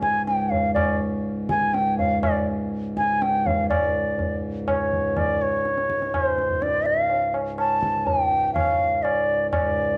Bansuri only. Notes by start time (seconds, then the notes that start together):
0.02 G#5
0.27 G5
0.50 F5
0.74 D5
1.50 G#5
1.74 G5
1.99 F5
2.23 D5
2.97 G#5
3.22 G5
3.46 F5
3.69 D5
4.68 C#5
5.17 D5
5.42 C#5
6.14 C#5
6.25 C5
6.62 D5
6.86 F5
7.59 A5
8.07 G5
8.54 F5
9.03 D5
9.51 D5